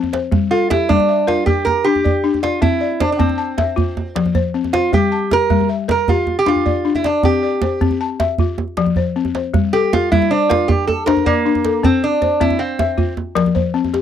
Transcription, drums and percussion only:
0.03 djembe tone
0.13 djembe slap
0.32 djembe slap, djembe tone, djembe bass
0.62 djembe slap
0.71 djembe slap, djembe tone
0.90 djembe bass
1.00 djembe tone
1.28 djembe slap
1.38 djembe slap
1.47 djembe bass
1.67 djembe tone
1.95 djembe tone
2.06 djembe bass
2.34 djembe tone
2.44 djembe slap
2.62 djembe slap, djembe tone, djembe bass
2.91 djembe slap
3.00 djembe slap, djembe tone
3.20 djembe bass
3.29 djembe tone
3.58 djembe slap, djembe tone
3.68 djembe slap
3.78 djembe bass
3.97 djembe tone
4.16 djembe slap
4.26 djembe tone
4.35 djembe bass
4.64 djembe tone
4.74 djembe slap
4.93 djembe slap, djembe tone, djembe bass
5.22 djembe slap
5.31 djembe slap, djembe tone
5.50 djembe bass
5.60 djembe tone
5.89 djembe slap, djembe tone
5.98 djembe slap
6.08 djembe bass
6.27 djembe tone
6.46 djembe slap
6.56 djembe tone
6.66 djembe bass
6.95 djembe tone
7.04 djembe slap
7.23 djembe slap, djembe tone, djembe bass
7.52 djembe slap
7.62 djembe slap, djembe tone
7.81 djembe slap, djembe bass
7.91 djembe slap, djembe tone
8.20 djembe slap, djembe tone
8.38 djembe bass
8.48 djembe slap
8.58 djembe tone
8.68 djembe slap
8.77 djembe slap
8.86 djembe tone
8.96 djembe slap, djembe bass
9.25 djembe slap, djembe tone
9.35 djembe slap
9.44 djembe slap
9.54 djembe slap, djembe tone, djembe bass
9.83 djembe slap
9.93 djembe slap, djembe tone
10.12 djembe bass
10.22 djembe tone
10.51 djembe slap, djembe tone
10.60 djembe slap
10.69 djembe bass
10.89 djembe tone
11.08 djembe slap
11.17 djembe tone
11.26 djembe bass
11.55 djembe tone
11.65 djembe slap
11.84 djembe slap, djembe tone, djembe bass
12.12 djembe slap
12.22 djembe tone
12.41 djembe bass
12.51 djembe tone
12.79 djembe slap, djembe tone
12.89 djembe slap
12.98 djembe bass
13.17 djembe tone
13.37 djembe slap
13.46 djembe tone
13.56 djembe bass
13.84 djembe tone
13.94 djembe slap

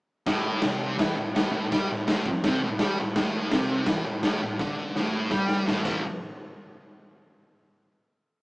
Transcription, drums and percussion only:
0.26 kick, snare, crash
0.62 snare, crash
0.99 kick, snare, crash
1.36 snare, crash
1.72 kick, snare, crash
2.08 snare, crash
2.26 kick
2.44 kick, snare, crash
2.79 snare, crash
3.16 kick, snare, crash
3.51 snare, crash
3.86 kick, snare, crash
4.23 snare, crash
4.59 kick, snare
4.96 snare
5.31 kick, snare
5.49 snare
5.67 snare
5.85 kick, crash

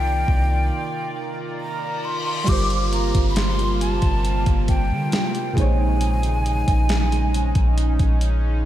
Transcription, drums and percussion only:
0.28 kick
2.48 kick, closed hi-hat, crash
2.70 closed hi-hat
2.93 closed hi-hat
3.15 kick, closed hi-hat
3.36 snare, closed hi-hat
3.59 closed hi-hat
3.81 closed hi-hat
4.02 kick, closed hi-hat
4.25 closed hi-hat
4.46 kick, closed hi-hat
4.68 kick, closed hi-hat
5.12 snare, closed hi-hat
5.35 closed hi-hat
5.57 kick, closed hi-hat
6.01 closed hi-hat
6.23 closed hi-hat
6.46 closed hi-hat
6.68 kick, closed hi-hat
6.89 snare, closed hi-hat
7.12 closed hi-hat
7.34 closed hi-hat
7.55 kick, closed hi-hat
7.78 closed hi-hat
7.99 kick, closed hi-hat
8.21 closed hi-hat

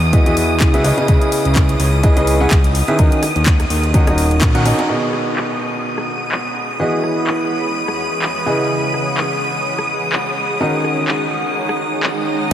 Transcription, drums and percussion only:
0.13 kick, closed hi-hat
0.26 closed hi-hat
0.37 open hi-hat
0.60 kick, clap, closed hi-hat
0.74 closed hi-hat
0.84 open hi-hat
0.98 closed hi-hat
1.08 kick, closed hi-hat
1.22 closed hi-hat
1.32 open hi-hat
1.45 closed hi-hat
1.55 kick, clap, closed hi-hat
1.69 closed hi-hat
1.80 open hi-hat
2.03 kick, closed hi-hat
2.17 closed hi-hat
2.27 open hi-hat
2.51 kick, clap, closed hi-hat
2.64 closed hi-hat
2.75 open hi-hat
2.88 closed hi-hat
2.99 kick, closed hi-hat
3.12 closed hi-hat
3.23 cross-stick, open hi-hat
3.36 closed hi-hat
3.46 kick, clap, closed hi-hat
3.60 cross-stick, closed hi-hat
3.70 open hi-hat
3.84 closed hi-hat
3.94 kick, closed hi-hat
4.07 cross-stick, closed hi-hat
4.18 open hi-hat
4.31 closed hi-hat
4.41 kick, clap, closed hi-hat
4.55 closed hi-hat
4.66 open hi-hat
4.79 closed hi-hat
4.89 crash
5.13 cross-stick
5.37 clap
5.98 cross-stick
6.32 clap
7.04 cross-stick
7.27 clap
7.88 cross-stick
8.22 clap
8.94 cross-stick
9.17 clap
9.79 cross-stick
10.12 clap
10.84 cross-stick
11.08 clap
11.69 cross-stick
12.03 clap

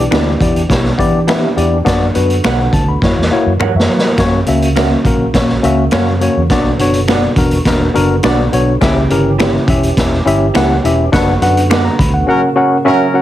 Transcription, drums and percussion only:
0.12 finger snap, snare, closed hi-hat
0.41 kick, closed hi-hat
0.56 closed hi-hat
0.70 kick, snare, closed hi-hat
0.85 snare
0.99 kick, closed hi-hat
1.28 finger snap, snare, closed hi-hat
1.58 closed hi-hat
1.86 kick, snare, closed hi-hat
2.15 closed hi-hat
2.30 closed hi-hat
2.44 finger snap, snare, closed hi-hat
2.73 kick, closed hi-hat
3.02 kick, snare
3.22 snare
3.60 finger snap, mid tom
3.80 snare
3.99 snare
4.18 kick, snare, closed hi-hat
4.46 closed hi-hat
4.62 closed hi-hat
4.76 finger snap, snare, closed hi-hat
5.05 kick, closed hi-hat
5.34 kick, snare, closed hi-hat
5.49 snare
5.64 closed hi-hat
5.91 finger snap, snare, closed hi-hat
6.21 closed hi-hat
6.50 kick, snare, closed hi-hat
6.79 closed hi-hat
6.93 closed hi-hat
7.08 finger snap, snare, closed hi-hat
7.36 kick, closed hi-hat
7.51 closed hi-hat
7.65 kick, snare, closed hi-hat
7.95 closed hi-hat
8.23 finger snap, snare, closed hi-hat
8.53 closed hi-hat
8.81 kick, snare, closed hi-hat
9.10 closed hi-hat
9.39 finger snap, snare, closed hi-hat
9.68 kick, closed hi-hat
9.83 closed hi-hat
9.97 kick, snare, closed hi-hat
10.13 snare
10.27 closed hi-hat
10.54 finger snap, snare, closed hi-hat
10.85 closed hi-hat
11.13 kick, snare, closed hi-hat
11.42 closed hi-hat
11.57 closed hi-hat
11.70 finger snap, snare, closed hi-hat
11.99 kick, closed hi-hat

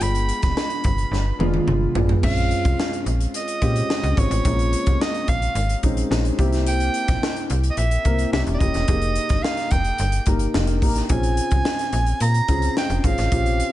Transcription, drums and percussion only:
0.01 closed hi-hat
0.15 closed hi-hat
0.29 closed hi-hat
0.42 kick, snare, closed hi-hat
0.57 snare
0.70 closed hi-hat
0.84 kick, closed hi-hat
0.98 closed hi-hat
1.13 snare
1.40 high tom
1.54 high tom
1.68 mid tom
1.95 floor tom
2.09 floor tom
2.23 kick, crash
2.37 closed hi-hat
2.51 closed hi-hat
2.65 kick, closed hi-hat
2.80 snare
2.93 closed hi-hat
3.06 closed hi-hat
3.20 closed hi-hat
3.34 closed hi-hat
3.48 closed hi-hat
3.62 kick, closed hi-hat
3.76 closed hi-hat
3.90 snare
4.03 closed hi-hat
4.17 kick, closed hi-hat
4.31 closed hi-hat
4.45 kick, closed hi-hat
4.59 closed hi-hat
4.73 closed hi-hat
4.86 kick, closed hi-hat
5.01 snare
5.14 closed hi-hat
5.28 kick, closed hi-hat
5.42 closed hi-hat
5.55 closed hi-hat
5.69 closed hi-hat
5.83 kick, closed hi-hat
5.97 closed hi-hat
6.12 snare
6.25 closed hi-hat
6.39 kick, closed hi-hat
6.52 snare, closed hi-hat
6.67 closed hi-hat
6.80 closed hi-hat
6.94 closed hi-hat
7.08 kick, snare, closed hi-hat
7.23 snare
7.36 closed hi-hat
7.50 closed hi-hat
7.63 closed hi-hat
7.77 closed hi-hat
7.91 closed hi-hat
8.05 kick, closed hi-hat
8.19 closed hi-hat
8.33 snare
8.47 closed hi-hat
8.60 kick, closed hi-hat
8.74 snare, closed hi-hat
8.88 kick, closed hi-hat
9.02 closed hi-hat
9.15 closed hi-hat
9.29 kick, snare, closed hi-hat
9.44 snare
9.57 snare, closed hi-hat
9.71 kick, closed hi-hat
9.84 closed hi-hat
9.98 closed hi-hat
10.12 closed hi-hat
10.26 kick, closed hi-hat
10.39 closed hi-hat
10.54 snare
10.67 closed hi-hat
10.82 kick, open hi-hat
10.95 snare, closed hi-hat
11.09 kick, closed hi-hat
11.23 closed hi-hat
11.37 closed hi-hat
11.51 kick, closed hi-hat
11.65 snare
11.79 snare, closed hi-hat
11.93 closed hi-hat
12.06 closed hi-hat
12.20 closed hi-hat
12.34 closed hi-hat
12.48 kick, closed hi-hat
12.62 closed hi-hat
12.77 snare
12.90 closed hi-hat
13.04 kick, closed hi-hat
13.18 snare, closed hi-hat
13.32 kick, closed hi-hat
13.46 closed hi-hat
13.60 closed hi-hat

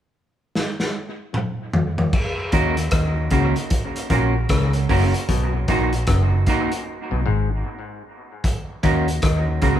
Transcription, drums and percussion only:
0.56 snare
0.80 snare
1.34 mid tom
1.73 floor tom
1.98 floor tom
2.13 kick, crash
2.52 kick, closed hi-hat
2.77 closed hi-hat
2.91 kick, cross-stick, closed hi-hat
3.30 kick, closed hi-hat
3.56 closed hi-hat
3.70 kick, closed hi-hat
3.96 closed hi-hat
4.10 kick, closed hi-hat
4.49 kick, cross-stick, closed hi-hat
4.73 closed hi-hat
4.89 kick, open hi-hat
5.14 closed hi-hat
5.29 kick, closed hi-hat
5.68 kick, closed hi-hat
5.93 closed hi-hat
6.07 kick, cross-stick, closed hi-hat
6.46 kick, closed hi-hat
6.72 closed hi-hat
8.44 kick, closed hi-hat
8.83 kick, closed hi-hat
9.08 closed hi-hat
9.22 kick, cross-stick, closed hi-hat
9.62 kick, closed hi-hat

